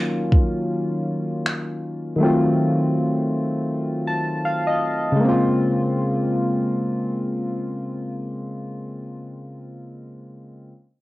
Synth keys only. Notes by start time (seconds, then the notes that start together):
Already playing: D#3 F#3 A#3 C#4 F4
2.16 D#3 F#3
2.20 A3 C4
2.24 F4
4.08 A5
4.45 F5
4.67 D#5
5.12 C#3
5.16 G#3
5.20 A#3
5.24 C4
5.28 F4